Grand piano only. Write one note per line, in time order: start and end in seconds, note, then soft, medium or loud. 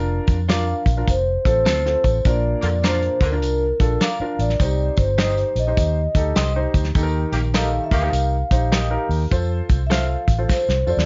0.00 0.36 D4 medium
0.00 0.36 F4 medium
0.00 0.37 A#4 medium
0.48 0.87 D4 medium
0.48 0.88 F4 medium
0.48 0.88 A#4 medium
0.97 1.07 D4 medium
0.97 1.08 F4 medium
0.97 1.08 A#4 medium
1.45 1.69 C4 medium
1.45 1.69 F4 medium
1.45 1.69 A4 medium
1.86 2.16 C4 medium
1.86 2.16 F4 medium
1.86 2.16 A4 medium
2.26 3.18 A#2 medium
2.26 2.72 D4 medium
2.26 2.72 F4 medium
2.26 2.72 A#4 medium
2.85 3.23 D4 medium
2.85 3.23 F4 medium
2.85 3.24 A#4 medium
3.32 3.64 D4 medium
3.32 3.64 F4 medium
3.32 3.64 A#4 medium
3.80 4.04 D4 medium
3.80 4.04 F4 medium
3.80 4.04 A4 medium
4.21 4.51 D4 medium
4.21 4.52 F4 medium
4.21 4.52 A#4 medium
4.60 5.53 C3 medium
4.60 5.07 D#4 medium
4.60 5.07 G4 medium
4.60 5.07 C5 medium
5.19 5.58 D#4 medium
5.19 5.58 G4 medium
5.19 5.59 C5 medium
5.67 5.99 D#4 medium
5.67 5.99 G4 medium
5.67 6.00 C5 medium
6.15 6.39 D#4 medium
6.15 6.40 G4 medium
6.15 6.40 A4 medium
6.56 6.86 D#4 medium
6.56 6.86 G4 medium
6.56 6.87 C5 medium
6.95 7.88 D#3 medium
6.95 7.42 D#4 medium
6.95 7.42 G4 medium
6.95 7.04 A4 medium
7.03 7.46 A#4 medium
7.54 7.93 D#4 medium
7.54 7.93 G4 medium
7.54 7.93 A4 medium
8.02 8.34 D#4 medium
8.02 8.35 G4 medium
8.02 8.35 A#4 medium
8.51 8.75 D#4 medium
8.51 8.75 G4 medium
8.51 8.75 C5 medium
8.90 9.22 D#4 medium
8.90 9.22 G4 medium
8.90 9.22 A#4 medium
9.31 9.78 F4 medium
9.31 9.78 A4 medium
9.31 9.78 C5 medium
9.90 10.29 F4 medium
9.90 10.30 A4 medium
9.90 10.30 C5 medium
10.38 10.71 F4 medium
10.38 10.71 A4 medium
10.38 10.71 C5 medium
10.87 11.05 F4 medium
10.87 11.05 A4 medium
10.87 11.05 C5 medium